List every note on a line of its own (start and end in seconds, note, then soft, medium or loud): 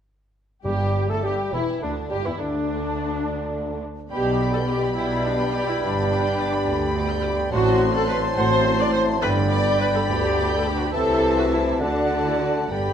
0.64 1.06 G1 medium
0.64 1.49 G2 medium
0.64 1.06 G2 medium
0.64 1.06 G3 medium
0.64 1.06 G4 medium
0.64 1.11 G4 medium
0.64 1.06 G4 medium
0.64 1.10 G4 medium
0.64 1.07 G4 medium
1.08 1.24 A2 soft
1.08 1.23 A3 medium
1.08 1.25 A3 medium
1.08 1.22 A4 medium
1.08 1.24 A4 medium
1.08 1.15 A4 soft
1.08 1.26 A4 medium
1.08 1.25 A4 soft
1.08 1.17 A4 medium
1.21 1.32 G1 medium
1.21 1.32 G2 medium
1.21 1.52 G3 medium
1.21 1.55 G3 medium
1.21 1.54 G4 medium
1.21 1.31 G4 medium
1.21 1.53 G4 medium
1.26 1.34 G4 soft
1.51 1.61 E1 medium
1.51 1.61 E2 medium
1.51 1.81 E3 medium
1.51 1.84 E3 soft
1.51 1.81 E4 medium
1.51 1.66 E4 medium
1.51 1.82 E4 medium
1.51 1.62 E4 medium
1.80 2.10 D2 soft
1.80 1.94 D3 soft
1.80 2.10 D3 soft
1.80 1.94 D4 soft
1.80 1.95 D4 soft
1.80 1.91 D4 soft
1.80 2.11 D4 soft
1.80 1.92 D4 soft
2.09 2.17 G1 medium
2.09 2.16 G2 soft
2.09 2.24 G3 medium
2.09 2.17 G3 medium
2.09 2.16 G4 medium
2.09 2.25 G4 medium
2.09 2.27 G4 medium
2.09 2.26 G4 soft
2.09 2.26 G4 medium
2.24 2.31 E2 soft
2.24 2.31 E3 soft
2.24 2.39 E3 soft
2.24 2.42 E4 soft
2.24 2.39 E4 soft
2.24 2.42 E4 soft
2.24 2.40 E4 medium
2.24 2.41 E4 soft
2.39 3.79 D2 soft
2.39 3.80 D2 soft
2.39 3.79 D3 soft
2.39 3.82 D4 medium
2.39 3.82 D4 soft
2.39 3.79 D4 soft
2.39 3.82 D4 soft
2.39 3.83 D4 soft
4.10 4.81 B1 medium
4.10 4.81 B2 medium
4.10 7.47 G3 soft
4.10 7.48 B3 medium
4.10 7.48 G4 soft
4.10 4.50 G4 medium
4.10 7.53 D5 medium
4.10 8.33 D5 medium
4.10 7.48 G5 medium
4.10 4.24 G5 soft
4.10 7.48 B5 soft
4.26 4.39 B5 soft
4.40 4.53 D6 soft
4.52 4.58 A4 medium
4.52 4.68 G6 soft
4.66 4.94 G4 medium
4.66 4.82 D6 soft
4.83 4.96 B5 soft
4.95 5.67 B1 soft
4.95 5.66 B2 medium
4.95 5.23 E4 medium
4.95 5.11 G5 medium
5.11 5.25 B5 soft
5.25 5.53 D4 medium
5.25 5.39 D6 soft
5.38 5.52 G6 soft
5.53 5.67 G4 medium
5.53 5.67 D6 soft
5.66 5.81 E4 medium
5.66 5.81 B5 medium
5.80 6.52 G1 medium
5.80 6.52 G2 medium
5.80 7.23 D4 medium
5.80 5.94 G5 medium
5.95 6.09 B5 soft
6.10 6.23 D6 medium
6.24 6.38 G6 medium
6.37 6.52 D6 medium
6.51 6.66 B5 medium
6.66 7.37 D2 medium
6.66 6.80 G5 medium
6.80 6.94 B5 medium
6.95 7.09 D6 medium
7.09 7.23 G6 medium
7.24 7.38 D6 medium
7.36 7.51 B5 medium
7.51 8.22 A1 medium
7.51 8.22 A2 medium
7.51 9.19 F#3 medium
7.51 8.33 C4 medium
7.51 8.32 F#4 medium
7.51 7.91 F#4 loud
7.51 9.23 C5 medium
7.51 7.64 F#5 medium
7.51 9.19 A5 medium
7.51 9.22 C6 medium
7.65 7.79 A5 medium
7.78 7.93 C6 medium
7.93 8.08 A4 medium
7.93 8.08 F#6 medium
8.07 8.16 B4 medium
8.07 8.22 C6 medium
8.20 8.35 A5 medium
8.35 9.07 A1 medium
8.35 9.08 A2 medium
8.35 9.21 C4 medium
8.35 8.78 F#4 medium
8.35 9.22 C5 medium
8.35 8.78 C5 loud
8.35 8.50 F#5 medium
8.50 8.64 A5 medium
8.64 8.79 C6 medium
8.78 9.22 E4 medium
8.78 8.94 D5 medium
8.78 8.93 F#6 medium
8.93 9.01 C5 loud
8.93 9.07 C6 medium
9.07 9.22 A5 medium
9.21 9.93 G1 medium
9.21 9.93 G2 medium
9.21 10.76 D3 medium
9.21 9.89 B3 medium
9.21 9.89 D4 medium
9.21 9.30 B4 loud
9.21 10.93 D5 medium
9.21 10.77 D5 medium
9.21 9.35 G5 medium
9.21 10.90 G5 medium
9.21 10.70 B5 medium
9.21 10.91 B5 medium
9.35 9.50 B5 medium
9.50 9.78 D5 medium
9.50 9.65 D6 medium
9.65 9.79 G6 medium
9.79 9.85 B4 medium
9.79 9.93 D6 medium
9.93 10.00 A4 medium
9.93 10.07 B5 medium
10.06 10.79 D2 medium
10.06 10.91 B3 medium
10.06 10.90 D4 medium
10.06 10.57 G4 medium
10.06 10.22 G5 medium
10.22 10.36 B5 medium
10.35 10.50 D6 medium
10.50 10.64 G6 medium
10.57 10.66 A4 medium
10.62 10.78 D6 medium
10.67 10.76 G4 medium
10.76 10.85 F#4 medium
10.76 10.92 B5 medium
10.85 10.94 G4 medium
10.92 11.78 C2 medium
10.92 11.78 C3 medium
10.92 11.83 E3 medium
10.92 11.78 A3 medium
10.92 11.81 E4 medium
10.92 11.36 A4 loud
10.92 11.78 C5 medium
10.92 11.64 E5 medium
10.92 11.77 E5 medium
10.92 11.77 A5 medium
11.37 11.52 F#4 medium
11.52 11.82 E4 medium
11.79 12.72 D2 soft
11.79 12.71 D3 medium
11.79 12.68 A3 medium
11.79 12.25 D4 medium
11.79 12.71 F#4 medium
11.79 12.70 D5 medium
11.79 12.69 F#5 medium
11.79 12.71 F#5 medium
11.79 12.69 A5 medium
11.79 12.70 A5 soft
12.27 12.41 E4 medium
12.42 12.50 F#4 medium
12.70 12.93 G1 medium
12.70 12.78 G2 soft
12.70 12.93 G2 soft
12.70 12.93 D3 soft
12.70 12.93 B3 soft
12.70 12.93 G4 medium
12.70 12.93 D5 soft
12.70 12.93 D5 medium
12.70 12.93 G5 soft
12.70 12.93 G5 medium
12.70 12.93 B5 soft
12.70 12.93 B5 medium
12.79 12.86 G2 soft
12.88 12.93 G2 soft